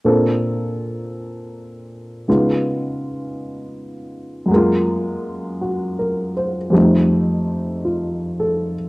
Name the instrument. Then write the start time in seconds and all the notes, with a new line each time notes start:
grand piano
0.05 A#2 A#3 C4 D4 A4
2.28 C#3 G#3 B3 D#4 F4
4.46 F#2 F#3
4.51 G#3 A#3
4.56 F4
5.61 F#4
5.99 A#4
6.37 C5
6.70 F2 F3 G3 A3
6.76 D#4
7.85 F4
8.40 A4